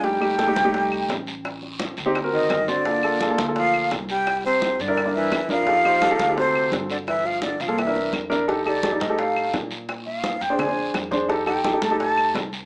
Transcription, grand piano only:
X:1
M:4/4
L:1/16
Q:1/4=171
K:Fmix
V:1 name="Grand piano"
[A,EG] z [A,EG] z [A,EA] [A,EG] z [A,EG]6 z3 | z6 z [CEG] z [C^F^A]3 z2 [CFc] z | [B,FA] z [B,FA] z [B,FA] [B,FA] z [B,FA]6 z3 | z6 z [D=EB] z [DEB]3 z2 [DEB] z |
[EGA] z [EGc] z [EGA] [EGA] z [EGA] [C^FA]6 z2 | z6 z [B,FA] z [D=EB]3 z2 [DEB] z | [EGA] z [EGA] z [EGA] [EGA] z [EGA]6 z3 | z6 z [D_Ac] z [DAc]3 z2 [DAc] z |
[EGA] z [EGA] z [EGA] [EGA] z [EGA]6 z3 |]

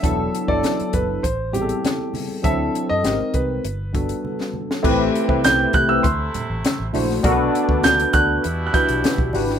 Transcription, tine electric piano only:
X:1
M:4/4
L:1/16
Q:1/4=100
K:Ador
V:1 name="Tine electric piano"
[F,B,DEA]2 z [F,B,DEA]4 z3 [G,B,CE^GA]4 z2 | [F,CDEA]4 [^G,^B,^D=G_B]3 z3 [=G,=B,=DFA]4 z2 | [A,CEGB]2 z [A,CEGB]2 z2 [A,CEGB] z6 [A,DEFc] z | [B,DFA_B=B]4 z2 [B,DFAB]2 z2 [DEFGB]2 z2 [DEFGB] z |]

